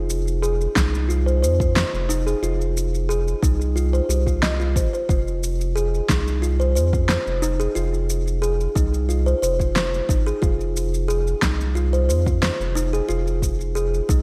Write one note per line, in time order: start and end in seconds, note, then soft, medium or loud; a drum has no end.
0.00 0.68 F1 loud
0.10 shaker medium
0.28 shaker soft
0.42 0.59 G#4 medium
0.42 shaker soft
0.61 shaker soft
0.75 1.44 C2 loud
0.75 0.92 D#4 medium
0.75 kick loud
0.75 snare medium
0.75 shaker medium
0.95 shaker soft
1.09 1.26 F4 medium
1.09 shaker soft
1.26 1.41 C5 medium
1.26 shaker soft
1.42 1.85 F2 medium
1.42 1.52 C5 medium
1.42 shaker medium
1.60 1.69 F4 medium
1.60 kick loud
1.60 shaker soft
1.76 1.86 C5 medium
1.76 snare medium
1.76 shaker soft
1.94 2.35 F1 medium
1.94 shaker soft
2.09 2.26 D#4 loud
2.09 shaker medium
2.27 2.42 G#4 medium
2.27 shaker soft
2.43 3.35 F1 medium
2.43 2.59 F4 medium
2.43 shaker soft
2.61 shaker soft
2.77 shaker medium
2.95 shaker soft
3.09 3.26 G#4 medium
3.09 shaker soft
3.28 shaker soft
3.42 4.01 C2 loud
3.42 3.59 D#4 medium
3.42 kick loud
3.42 shaker medium
3.61 shaker soft
3.76 3.92 F4 medium
3.76 shaker soft
3.93 4.08 C5 medium
3.93 shaker soft
4.09 4.77 C2 medium
4.09 4.25 G4 medium
4.09 shaker medium
4.27 4.42 F4 medium
4.27 kick medium
4.27 shaker soft
4.42 4.59 D#5 medium
4.42 snare medium
4.42 shaker soft
4.60 4.74 F4 medium
4.60 shaker soft
4.76 4.88 G#1 medium
4.76 4.92 C5 medium
4.76 kick loud
4.76 shaker medium
4.93 5.08 C5 medium
4.93 shaker soft
5.09 6.01 F1 medium
5.09 5.26 F4 medium
5.09 kick loud
5.09 shaker soft
5.28 shaker soft
5.43 shaker medium
5.61 shaker soft
5.76 5.92 G#4 medium
5.76 shaker soft
5.94 shaker soft
6.09 6.78 C2 loud
6.09 6.26 D#4 medium
6.09 kick loud
6.09 snare medium
6.09 shaker medium
6.28 shaker soft
6.42 6.59 F4 medium
6.42 shaker soft
6.60 6.74 C5 medium
6.60 shaker soft
6.75 7.18 F2 medium
6.75 6.86 C5 medium
6.75 shaker medium
6.93 7.02 F4 medium
6.93 kick loud
6.93 shaker soft
7.09 7.19 C5 medium
7.09 snare medium
7.09 shaker soft
7.27 7.68 F1 medium
7.27 shaker soft
7.42 7.59 D#4 loud
7.42 shaker medium
7.60 7.75 G#4 medium
7.60 shaker soft
7.75 8.68 F1 medium
7.75 7.92 F4 loud
7.75 shaker soft
7.94 shaker soft
8.10 shaker medium
8.27 shaker soft
8.42 8.59 G#4 medium
8.42 shaker soft
8.61 shaker soft
8.75 9.35 C2 loud
8.75 8.92 D#4 loud
8.75 kick loud
8.75 shaker medium
8.94 shaker soft
9.09 9.26 F4 medium
9.09 shaker soft
9.26 9.41 C5 medium
9.26 shaker soft
9.42 10.01 F1 medium
9.42 9.52 C5 medium
9.42 shaker medium
9.60 9.69 F4 medium
9.60 kick medium
9.60 shaker soft
9.75 9.86 C5 medium
9.75 snare medium
9.75 shaker soft
9.94 shaker soft
10.09 10.33 G#1 medium
10.09 10.26 D#4 medium
10.09 kick loud
10.09 shaker medium
10.27 10.42 G#4 loud
10.27 shaker soft
10.42 11.35 F1 loud
10.42 10.59 F4 loud
10.42 kick loud
10.42 shaker soft
10.61 shaker soft
10.77 shaker medium
10.94 shaker soft
11.08 11.25 G#4 medium
11.08 shaker soft
11.27 shaker soft
11.42 12.11 C2 loud
11.42 11.59 D#4 medium
11.42 kick medium
11.42 snare medium
11.42 shaker medium
11.61 shaker soft
11.75 11.92 F4 medium
11.75 shaker soft
11.93 12.08 C5 medium
11.93 shaker soft
12.09 12.51 F2 medium
12.09 12.19 C5 medium
12.09 shaker medium
12.26 12.36 F4 medium
12.26 kick loud
12.26 shaker soft
12.42 12.52 C5 medium
12.42 snare medium
12.42 shaker soft
12.60 13.01 F1 medium
12.60 shaker soft
12.75 12.92 D#4 loud
12.75 shaker medium
12.93 13.08 G#4 medium
12.93 shaker soft
13.09 14.01 F1 medium
13.09 13.26 F4 loud
13.09 shaker soft
13.27 shaker soft
13.42 kick medium
13.42 shaker medium
13.61 shaker soft
13.75 13.92 G#4 medium
13.75 shaker soft
13.94 shaker soft
14.09 14.22 C2 loud
14.09 14.22 D#4 loud
14.09 kick medium
14.09 shaker medium